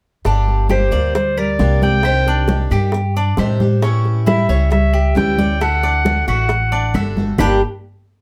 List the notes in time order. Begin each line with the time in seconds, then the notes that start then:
0.25 G1 D3 G3 A#3 D4 G4, high bongo, high conga
0.48 high bongo, high conga
0.69 G3 A#3 D4 G4 C5, high bongo, high conga, claves
0.91 D2 G3 A#3 D4 G4 D5, high bongo, high conga
1.14 G3 C5, muted steel-string acoustic guitar stroke, high bongo, high conga
1.37 G3 A#4 D5, high conga, claves
1.59 C2 D3 G3 A#3 D4 G4, high bongo, low bongo, high conga
1.82 A#3 C4 D4 G4 D5 G5, high bongo, high conga
2.03 C3 D#3 G3 D4 G4 C5, high bongo, claves
2.26 D4, high bongo, high conga
2.48 D#3 G3 D4 G4, high bongo, high conga
2.70 G2 D#3 G3 D4 G4, high bongo, high conga, claves
2.92 muted steel-string acoustic guitar stroke, high bongo, high conga
3.16 D4, high conga
3.37 A2 C3 D#3 G3 D4 G4 C5, high bongo, low bongo, high conga, claves
3.60 G3 D4 G4, high bongo, high conga
3.82 E3 G3 C#4 E4, high bongo
4.05 high bongo, high conga
4.26 E3 G3 C#4 E4 E5, high bongo, high conga, claves
4.49 C#2 G3 C#4 E4 C#5, high bongo, high conga
4.70 G3 E5, muted steel-string acoustic guitar stroke, high bongo, high conga
4.93 G4, high conga, claves
5.15 D2 E3 G3 C#4 E4 G5, high bongo, low bongo, high conga
5.38 G3 C#4 E4 D5, high bongo, high conga
5.61 D3 A3 D4 F#4 A4 F#5, high bongo, claves
5.83 D4, high bongo, high conga
6.05 D3 A3 D4 F#4, high bongo, high conga
6.27 A1 A3 D4 F#4 F#5, high bongo, high conga, claves
6.49 muted steel-string acoustic guitar stroke, high bongo, high conga
6.72 D4, high conga
6.94 G1 D3 A3 D4 F#4 A4, high bongo, low bongo, high conga, claves
7.16 A3 D4 F#4, high bongo, high conga
7.38 G1 G2 D3 G3 A#3 D4 G4 G5, low bongo, low conga, claves